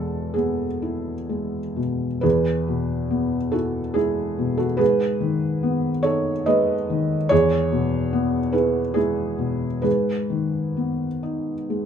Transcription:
0, 0, Header, 1, 2, 480
1, 0, Start_track
1, 0, Key_signature, 4, "major"
1, 0, Tempo, 944882
1, 1139, Time_signature, 3, 2, 24, 8
1, 1140, Tempo, 854701
1, 2580, Tempo, 834492
1, 4980, Tempo, 878477
1, 5460, Tempo, 930233
1, 6490, End_track
2, 0, Start_track
2, 0, Title_t, "Felt piano"
2, 0, Program_c, 0, 0
2, 0, Control_c, 0, 64, 127
2, 0, Note_on_c, 0, 40, 39
2, 0, Note_on_c, 0, 47, 34
2, 0, Note_on_c, 0, 56, 30
2, 0, Note_on_c, 0, 69, 64
2, 172, Note_on_c, 0, 68, 40
2, 177, Note_off_c, 0, 69, 0
2, 182, Note_on_c, 0, 59, 29
2, 328, Note_off_c, 0, 56, 0
2, 418, Note_on_c, 0, 64, 31
2, 568, Note_off_c, 0, 59, 0
2, 658, Note_on_c, 0, 56, 28
2, 804, Note_off_c, 0, 64, 0
2, 896, Note_off_c, 0, 47, 0
2, 896, Note_on_c, 0, 47, 28
2, 899, Note_off_c, 0, 68, 0
2, 1045, Note_off_c, 0, 56, 0
2, 1119, Note_off_c, 0, 40, 0
2, 1124, Note_on_c, 0, 71, 64
2, 1133, Note_on_c, 0, 68, 49
2, 1134, Note_on_c, 0, 40, 39
2, 1135, Note_off_c, 0, 47, 0
2, 1148, Control_c, 0, 64, 0
2, 1244, Control_c, 0, 64, 127
2, 1386, Note_on_c, 0, 47, 31
2, 1623, Note_on_c, 0, 59, 33
2, 1772, Note_off_c, 0, 47, 0
2, 1842, Note_off_c, 0, 68, 0
2, 1855, Note_on_c, 0, 69, 57
2, 1860, Note_off_c, 0, 71, 0
2, 1860, Note_on_c, 0, 66, 42
2, 1866, Note_on_c, 0, 64, 32
2, 2007, Note_off_c, 0, 59, 0
2, 2085, Note_off_c, 0, 66, 0
2, 2091, Note_off_c, 0, 64, 0
2, 2091, Note_on_c, 0, 68, 59
2, 2099, Note_off_c, 0, 69, 0
2, 2099, Note_on_c, 0, 64, 43
2, 2100, Note_on_c, 0, 56, 33
2, 2342, Note_on_c, 0, 47, 35
2, 2435, Note_off_c, 0, 64, 0
2, 2449, Note_on_c, 0, 69, 56
2, 2454, Note_off_c, 0, 68, 0
2, 2457, Note_on_c, 0, 66, 40
2, 2482, Note_off_c, 0, 56, 0
2, 2553, Note_off_c, 0, 40, 0
2, 2558, Note_on_c, 0, 71, 70
2, 2566, Note_on_c, 0, 68, 55
2, 2568, Note_off_c, 0, 66, 0
2, 2568, Note_on_c, 0, 44, 44
2, 2573, Note_off_c, 0, 69, 0
2, 2578, Note_off_c, 0, 47, 0
2, 2587, Control_c, 0, 64, 0
2, 2679, Control_c, 0, 64, 127
2, 2808, Note_on_c, 0, 51, 38
2, 3053, Note_on_c, 0, 59, 39
2, 3198, Note_off_c, 0, 51, 0
2, 3269, Note_off_c, 0, 68, 0
2, 3281, Note_on_c, 0, 73, 76
2, 3289, Note_off_c, 0, 71, 0
2, 3290, Note_on_c, 0, 69, 58
2, 3291, Note_on_c, 0, 63, 41
2, 3440, Note_off_c, 0, 59, 0
2, 3518, Note_off_c, 0, 69, 0
2, 3531, Note_off_c, 0, 73, 0
2, 3531, Note_on_c, 0, 75, 80
2, 3536, Note_on_c, 0, 71, 59
2, 3538, Note_on_c, 0, 56, 40
2, 3681, Note_off_c, 0, 63, 0
2, 3783, Note_on_c, 0, 51, 40
2, 3924, Note_off_c, 0, 56, 0
2, 3993, Note_off_c, 0, 44, 0
2, 3996, Note_off_c, 0, 71, 0
2, 4009, Note_on_c, 0, 73, 89
2, 4016, Note_off_c, 0, 75, 0
2, 4019, Note_on_c, 0, 40, 52
2, 4022, Note_off_c, 0, 51, 0
2, 4023, Note_on_c, 0, 68, 70
2, 4030, Control_c, 0, 64, 0
2, 4111, Control_c, 0, 64, 127
2, 4256, Note_on_c, 0, 47, 40
2, 4490, Note_on_c, 0, 59, 41
2, 4639, Note_off_c, 0, 47, 0
2, 4713, Note_off_c, 0, 68, 0
2, 4718, Note_on_c, 0, 71, 59
2, 4721, Note_on_c, 0, 68, 43
2, 4725, Note_on_c, 0, 64, 38
2, 4730, Note_off_c, 0, 73, 0
2, 4877, Note_off_c, 0, 59, 0
2, 4948, Note_off_c, 0, 68, 0
2, 4956, Note_on_c, 0, 68, 61
2, 4957, Note_off_c, 0, 64, 0
2, 4966, Note_on_c, 0, 64, 45
2, 4967, Note_on_c, 0, 56, 34
2, 4969, Note_off_c, 0, 71, 0
2, 5200, Note_on_c, 0, 47, 33
2, 5355, Note_off_c, 0, 56, 0
2, 5431, Note_off_c, 0, 64, 0
2, 5436, Note_off_c, 0, 40, 0
2, 5436, Note_off_c, 0, 68, 0
2, 5437, Note_on_c, 0, 71, 58
2, 5444, Note_on_c, 0, 68, 42
2, 5447, Note_on_c, 0, 44, 38
2, 5452, Note_off_c, 0, 47, 0
2, 5467, Control_c, 0, 64, 0
2, 5571, Control_c, 0, 64, 127
2, 5687, Note_on_c, 0, 51, 29
2, 5929, Note_on_c, 0, 59, 31
2, 6077, Note_off_c, 0, 51, 0
2, 6167, Note_on_c, 0, 63, 30
2, 6318, Note_off_c, 0, 59, 0
2, 6409, Note_on_c, 0, 56, 31
2, 6490, Note_off_c, 0, 44, 0
2, 6490, Note_off_c, 0, 56, 0
2, 6490, Note_off_c, 0, 63, 0
2, 6490, Note_off_c, 0, 68, 0
2, 6490, Note_off_c, 0, 71, 0
2, 6490, End_track
0, 0, End_of_file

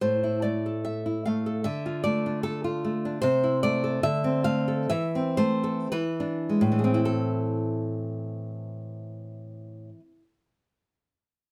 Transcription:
0, 0, Header, 1, 2, 480
1, 0, Start_track
1, 0, Key_signature, 0, "minor"
1, 0, Tempo, 832178
1, 20, Time_signature, 2, 2, 24, 8
1, 500, Tempo, 791557
1, 2420, Tempo, 860832
1, 2900, Tempo, 998336
1, 3380, Tempo, 1162791
1, 3860, Tempo, 1125704
1, 5762, End_track
2, 0, Start_track
2, 0, Title_t, "Nylon-string guitar"
2, 0, Program_c, 0, 24
2, 8, Note_on_c, 0, 72, 76
2, 11, Note_on_c, 0, 45, 61
2, 136, Note_on_c, 0, 64, 41
2, 243, Note_on_c, 0, 74, 73
2, 246, Note_off_c, 0, 72, 0
2, 253, Note_on_c, 0, 57, 44
2, 380, Note_on_c, 0, 69, 38
2, 481, Note_off_c, 0, 74, 0
2, 488, Note_on_c, 0, 76, 70
2, 609, Note_off_c, 0, 64, 0
2, 616, Note_on_c, 0, 64, 47
2, 727, Note_off_c, 0, 76, 0
2, 735, Note_on_c, 0, 77, 72
2, 736, Note_off_c, 0, 57, 0
2, 743, Note_on_c, 0, 57, 43
2, 854, Note_off_c, 0, 69, 0
2, 861, Note_on_c, 0, 69, 46
2, 951, Note_off_c, 0, 45, 0
2, 967, Note_off_c, 0, 77, 0
2, 970, Note_on_c, 0, 76, 90
2, 976, Note_on_c, 0, 50, 62
2, 977, Note_off_c, 0, 64, 0
2, 979, Note_off_c, 0, 69, 0
2, 980, Note_off_c, 0, 57, 0
2, 1101, Note_on_c, 0, 65, 50
2, 1200, Note_off_c, 0, 76, 0
2, 1209, Note_on_c, 0, 74, 79
2, 1216, Note_on_c, 0, 57, 55
2, 1345, Note_on_c, 0, 62, 48
2, 1440, Note_off_c, 0, 74, 0
2, 1449, Note_on_c, 0, 69, 80
2, 1570, Note_off_c, 0, 65, 0
2, 1575, Note_off_c, 0, 69, 0
2, 1577, Note_on_c, 0, 65, 55
2, 1692, Note_off_c, 0, 57, 0
2, 1700, Note_on_c, 0, 57, 54
2, 1818, Note_off_c, 0, 62, 0
2, 1825, Note_on_c, 0, 62, 57
2, 1907, Note_off_c, 0, 50, 0
2, 1922, Note_off_c, 0, 65, 0
2, 1924, Note_on_c, 0, 72, 106
2, 1934, Note_on_c, 0, 48, 88
2, 1937, Note_off_c, 0, 57, 0
2, 1939, Note_off_c, 0, 62, 0
2, 2058, Note_on_c, 0, 64, 55
2, 2160, Note_off_c, 0, 72, 0
2, 2175, Note_on_c, 0, 74, 94
2, 2181, Note_on_c, 0, 57, 65
2, 2302, Note_on_c, 0, 69, 67
2, 2405, Note_off_c, 0, 48, 0
2, 2411, Note_off_c, 0, 74, 0
2, 2420, Note_on_c, 0, 50, 86
2, 2420, Note_on_c, 0, 76, 96
2, 2422, Note_off_c, 0, 64, 0
2, 2422, Note_off_c, 0, 69, 0
2, 2423, Note_off_c, 0, 57, 0
2, 2536, Note_on_c, 0, 60, 59
2, 2643, Note_off_c, 0, 76, 0
2, 2649, Note_on_c, 0, 77, 97
2, 2653, Note_on_c, 0, 57, 52
2, 2780, Note_on_c, 0, 69, 59
2, 2886, Note_off_c, 0, 50, 0
2, 2888, Note_off_c, 0, 77, 0
2, 2900, Note_off_c, 0, 57, 0
2, 2901, Note_off_c, 0, 60, 0
2, 2901, Note_on_c, 0, 76, 108
2, 2902, Note_off_c, 0, 69, 0
2, 2905, Note_on_c, 0, 52, 83
2, 3024, Note_on_c, 0, 60, 60
2, 3121, Note_off_c, 0, 76, 0
2, 3130, Note_on_c, 0, 72, 97
2, 3135, Note_on_c, 0, 57, 57
2, 3256, Note_on_c, 0, 69, 57
2, 3368, Note_off_c, 0, 52, 0
2, 3370, Note_off_c, 0, 72, 0
2, 3382, Note_off_c, 0, 57, 0
2, 3382, Note_off_c, 0, 69, 0
2, 3385, Note_off_c, 0, 60, 0
2, 3390, Note_on_c, 0, 71, 85
2, 3392, Note_on_c, 0, 52, 78
2, 3507, Note_on_c, 0, 62, 60
2, 3629, Note_on_c, 0, 56, 44
2, 3676, Note_on_c, 0, 45, 71
2, 3716, Note_off_c, 0, 52, 0
2, 3721, Note_on_c, 0, 52, 64
2, 3748, Note_off_c, 0, 71, 0
2, 3750, Note_on_c, 0, 68, 50
2, 3771, Note_on_c, 0, 60, 66
2, 3812, Note_off_c, 0, 62, 0
2, 3813, Note_on_c, 0, 64, 67
2, 3858, Note_off_c, 0, 68, 0
2, 3859, Note_on_c, 0, 69, 71
2, 3866, Note_off_c, 0, 56, 0
2, 5068, Note_off_c, 0, 45, 0
2, 5114, Note_off_c, 0, 52, 0
2, 5166, Note_off_c, 0, 60, 0
2, 5210, Note_off_c, 0, 64, 0
2, 5257, Note_off_c, 0, 69, 0
2, 5762, End_track
0, 0, End_of_file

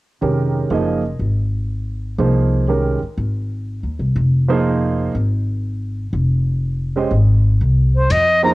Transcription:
0, 0, Header, 1, 6, 480
1, 0, Start_track
1, 0, Key_signature, -4, "minor"
1, 0, Tempo, 493016
1, 205, Time_signature, 4, 2, 24, 8
1, 8315, End_track
2, 0, Start_track
2, 0, Title_t, "Flute"
2, 0, Program_c, 0, 73
2, 7747, Note_on_c, 0, 72, 76
2, 7899, Note_on_c, 0, 75, 86
2, 7914, Note_off_c, 0, 72, 0
2, 8216, Note_off_c, 0, 75, 0
2, 8222, Note_on_c, 0, 82, 77
2, 8280, Note_off_c, 0, 82, 0
2, 8315, End_track
3, 0, Start_track
3, 0, Title_t, "Grand piano"
3, 0, Program_c, 1, 0
3, 206, Note_on_c, 1, 51, 44
3, 210, Note_on_c, 1, 56, 38
3, 211, Note_on_c, 1, 61, 39
3, 216, Note_on_c, 1, 67, 42
3, 219, Note_on_c, 1, 70, 45
3, 671, Note_off_c, 1, 51, 0
3, 672, Note_off_c, 1, 56, 0
3, 673, Note_off_c, 1, 61, 0
3, 675, Note_off_c, 1, 67, 0
3, 677, Note_off_c, 1, 70, 0
3, 688, Note_on_c, 1, 53, 49
3, 691, Note_on_c, 1, 58, 45
3, 694, Note_on_c, 1, 63, 43
3, 697, Note_on_c, 1, 68, 44
3, 699, Note_on_c, 1, 75, 58
3, 979, Note_off_c, 1, 53, 0
3, 981, Note_off_c, 1, 58, 0
3, 982, Note_off_c, 1, 63, 0
3, 984, Note_off_c, 1, 68, 0
3, 985, Note_off_c, 1, 75, 0
3, 2126, Note_on_c, 1, 53, 48
3, 2127, Note_on_c, 1, 58, 43
3, 2127, Note_on_c, 1, 63, 41
3, 2133, Note_on_c, 1, 68, 43
3, 2137, Note_on_c, 1, 72, 50
3, 2591, Note_off_c, 1, 53, 0
3, 2591, Note_off_c, 1, 58, 0
3, 2591, Note_off_c, 1, 63, 0
3, 2594, Note_off_c, 1, 68, 0
3, 2596, Note_off_c, 1, 72, 0
3, 2609, Note_on_c, 1, 56, 42
3, 2610, Note_on_c, 1, 51, 44
3, 2610, Note_on_c, 1, 61, 41
3, 2613, Note_on_c, 1, 67, 42
3, 2622, Note_on_c, 1, 70, 51
3, 2900, Note_off_c, 1, 51, 0
3, 2900, Note_off_c, 1, 56, 0
3, 2900, Note_off_c, 1, 61, 0
3, 2902, Note_off_c, 1, 67, 0
3, 2906, Note_off_c, 1, 70, 0
3, 4367, Note_on_c, 1, 53, 58
3, 4373, Note_on_c, 1, 58, 58
3, 4377, Note_on_c, 1, 63, 61
3, 4380, Note_on_c, 1, 68, 53
3, 4380, Note_on_c, 1, 72, 71
3, 4973, Note_off_c, 1, 53, 0
3, 4976, Note_off_c, 1, 58, 0
3, 4978, Note_off_c, 1, 63, 0
3, 4980, Note_off_c, 1, 68, 0
3, 4980, Note_off_c, 1, 72, 0
3, 6773, Note_on_c, 1, 56, 54
3, 6773, Note_on_c, 1, 61, 49
3, 6779, Note_on_c, 1, 67, 46
3, 6783, Note_on_c, 1, 75, 60
3, 6784, Note_on_c, 1, 72, 50
3, 6911, Note_off_c, 1, 61, 0
3, 6912, Note_off_c, 1, 56, 0
3, 6915, Note_off_c, 1, 67, 0
3, 6916, Note_off_c, 1, 75, 0
3, 6917, Note_off_c, 1, 72, 0
3, 8206, Note_on_c, 1, 53, 56
3, 8210, Note_on_c, 1, 58, 51
3, 8216, Note_on_c, 1, 63, 55
3, 8217, Note_on_c, 1, 68, 51
3, 8217, Note_on_c, 1, 72, 61
3, 8315, Note_off_c, 1, 53, 0
3, 8315, Note_off_c, 1, 58, 0
3, 8315, Note_off_c, 1, 63, 0
3, 8315, Note_off_c, 1, 68, 0
3, 8315, Note_off_c, 1, 72, 0
3, 8315, End_track
4, 0, Start_track
4, 0, Title_t, "Upright bass"
4, 0, Program_c, 2, 32
4, 213, Note_on_c, 2, 29, 62
4, 656, Note_off_c, 2, 29, 0
4, 684, Note_on_c, 2, 30, 65
4, 1131, Note_off_c, 2, 30, 0
4, 1161, Note_on_c, 2, 32, 63
4, 2085, Note_off_c, 2, 32, 0
4, 2125, Note_on_c, 2, 36, 66
4, 2891, Note_off_c, 2, 36, 0
4, 3090, Note_on_c, 2, 32, 66
4, 3689, Note_off_c, 2, 32, 0
4, 3730, Note_on_c, 2, 39, 52
4, 3877, Note_off_c, 2, 39, 0
4, 3887, Note_on_c, 2, 36, 54
4, 4036, Note_off_c, 2, 36, 0
4, 4048, Note_on_c, 2, 29, 73
4, 4968, Note_off_c, 2, 29, 0
4, 5012, Note_on_c, 2, 32, 66
4, 5930, Note_off_c, 2, 32, 0
4, 5965, Note_on_c, 2, 29, 70
4, 6886, Note_off_c, 2, 29, 0
4, 6920, Note_on_c, 2, 32, 70
4, 7369, Note_off_c, 2, 32, 0
4, 7408, Note_on_c, 2, 36, 64
4, 7853, Note_off_c, 2, 36, 0
4, 7890, Note_on_c, 2, 41, 69
4, 8315, Note_off_c, 2, 41, 0
4, 8315, End_track
5, 0, Start_track
5, 0, Title_t, "Muted upright bass strokes"
5, 2935, Note_on_c, 9, 29, 31
5, 3032, Note_off_c, 9, 29, 0
5, 8315, End_track
6, 0, Start_track
6, 0, Title_t, "Drums"
6, 7888, Note_on_c, 9, 51, 37
6, 7986, Note_off_c, 9, 51, 0
6, 8315, End_track
0, 0, End_of_file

